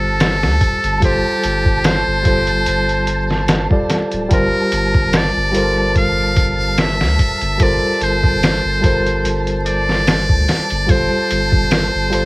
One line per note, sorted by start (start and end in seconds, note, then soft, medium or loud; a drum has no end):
0.00 0.45 G1 medium
0.00 0.97 G3 medium
0.00 0.97 F4 medium
0.00 0.98 G4 medium
0.00 1.04 A4 loud
0.00 0.99 C5 loud
0.00 12.25 A5 medium
0.20 snare loud
0.20 closed hi-hat medium
0.43 0.59 D2 medium
0.43 snare medium
0.61 kick loud
0.61 closed hi-hat medium
0.84 1.00 G1 medium
0.84 closed hi-hat soft
1.00 1.22 G1 loud
1.00 2.20 G3 medium
1.00 2.21 F4 medium
1.00 2.22 A4 medium
1.00 kick loud
1.00 closed hi-hat medium
1.05 1.87 G4 loud
1.05 2.23 C5 loud
1.44 2.03 G1 medium
1.44 closed hi-hat medium
1.66 kick medium
1.84 3.50 C5 loud
1.84 snare loud
1.84 closed hi-hat medium
2.07 2.23 G1 medium
2.23 2.67 G1 medium
2.23 3.65 G3 medium
2.23 3.66 F4 medium
2.23 3.67 A4 medium
2.23 kick loud
2.23 closed hi-hat medium
2.28 3.68 C5 medium
2.47 closed hi-hat soft
2.66 3.67 G1 medium
2.66 closed hi-hat medium
2.89 closed hi-hat soft
3.07 closed hi-hat medium
3.30 snare soft
3.48 snare loud
3.48 closed hi-hat medium
3.70 4.26 G3 medium
3.70 4.26 F4 medium
3.70 4.27 A4 medium
3.70 4.27 D5 loud
3.70 kick loud
3.90 snare medium
3.90 closed hi-hat medium
4.12 4.29 D1 medium
4.12 closed hi-hat soft
4.29 4.51 G1 loud
4.29 5.49 G3 medium
4.29 5.49 F4 medium
4.29 5.50 G4 medium
4.29 5.50 A#4 medium
4.29 kick loud
4.29 closed hi-hat medium
4.33 5.18 A#4 loud
4.33 5.51 C5 loud
4.72 5.31 G1 medium
4.72 closed hi-hat medium
4.94 kick medium
5.13 5.97 D5 loud
5.13 snare loud
5.13 closed hi-hat medium
5.36 5.53 G1 medium
5.52 5.96 G1 medium
5.52 7.54 G3 medium
5.52 7.54 F4 medium
5.52 7.55 A4 medium
5.52 7.56 A#4 medium
5.52 closed hi-hat medium
5.57 7.56 C5 medium
5.96 7.02 G1 medium
5.96 6.82 F5 loud
5.96 kick medium
5.96 closed hi-hat medium
6.37 kick loud
6.37 closed hi-hat medium
6.78 7.64 E5 loud
6.78 snare loud
6.78 closed hi-hat medium
7.01 7.17 D2 medium
7.01 snare medium
7.19 kick medium
7.19 closed hi-hat medium
7.41 7.58 G1 medium
7.41 closed hi-hat soft
7.58 7.80 G1 loud
7.58 8.78 G3 medium
7.58 8.78 F4 medium
7.58 8.79 A4 medium
7.58 8.79 A#4 medium
7.58 kick loud
7.58 closed hi-hat medium
7.63 8.80 C5 loud
7.63 8.02 D5 loud
8.01 8.60 G1 medium
8.01 9.37 C5 loud
8.01 closed hi-hat medium
8.24 kick medium
8.43 snare loud
8.43 closed hi-hat medium
8.64 8.81 G1 medium
8.81 9.24 G1 medium
8.81 10.83 G3 medium
8.81 10.84 F4 medium
8.81 10.84 A4 medium
8.81 10.85 A#4 medium
8.81 kick loud
8.81 closed hi-hat medium
8.86 10.85 C5 loud
9.06 closed hi-hat soft
9.25 10.31 G1 medium
9.25 closed hi-hat medium
9.47 closed hi-hat soft
9.66 10.92 D5 loud
9.66 closed hi-hat medium
9.89 snare soft
10.07 snare loud
10.07 closed hi-hat medium
10.29 10.46 D2 medium
10.29 kick loud
10.49 snare medium
10.49 closed hi-hat medium
10.70 10.87 G1 medium
10.70 closed hi-hat soft
10.87 11.08 G1 loud
10.87 12.06 G3 medium
10.87 12.07 F4 medium
10.87 12.08 A4 medium
10.87 12.25 C5 loud
10.87 kick loud
10.87 closed hi-hat medium
10.92 12.09 C5 loud
11.31 11.89 G1 medium
11.31 closed hi-hat medium
11.52 kick medium
11.71 snare loud
11.71 closed hi-hat medium
11.95 12.10 G1 medium
12.10 12.25 G1 medium
12.10 12.25 G3 medium
12.10 12.25 F4 medium
12.10 12.25 A4 medium
12.10 closed hi-hat medium
12.14 12.25 C5 loud